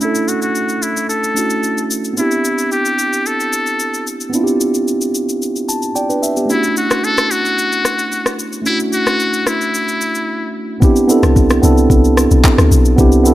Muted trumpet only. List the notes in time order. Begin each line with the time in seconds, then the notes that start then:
0.02 E4
0.28 F#4
0.42 F#4
0.83 E4
1.10 A4
2.18 E4
2.72 G4
3.26 A4
6.50 E4
6.78 F#4
7.04 A4
7.31 F#4
8.67 E4
8.94 F#4
9.48 E4